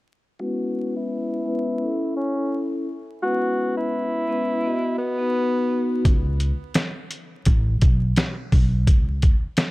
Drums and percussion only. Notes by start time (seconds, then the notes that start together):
6.05 kick, closed hi-hat
6.40 closed hi-hat
6.74 snare, closed hi-hat
7.11 closed hi-hat
7.45 kick, closed hi-hat
7.81 kick, closed hi-hat
8.16 snare, closed hi-hat
8.52 kick, open hi-hat
8.87 kick, closed hi-hat
9.22 kick, closed hi-hat
9.57 snare, closed hi-hat